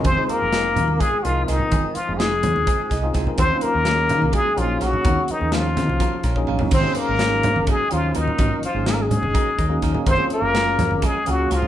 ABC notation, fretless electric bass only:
X:1
M:7/8
L:1/16
Q:1/4=126
K:Fphr
V:1 name="Fretless electric bass" clef=bass
F,,, z2 F,,,3 F,, E,, z2 C,,2 C,, z | F,,, z2 F,,,3 F,, E,, z2 C,,2 C,, z | E,, z2 E,,3 E, D,, z2 B,,,2 B,,, z | E,, z2 E,,3 E, D,, z2 B,,,2 B,,, z |
A,,, z2 A,,,3 A,, G,,, z2 E,,2 E,, z | A,,, z2 A,,,3 A,, G,,, z2 E,,2 E,, z | G,,, z2 G,,,3 G,, F,,, z2 D,,2 D,, z |]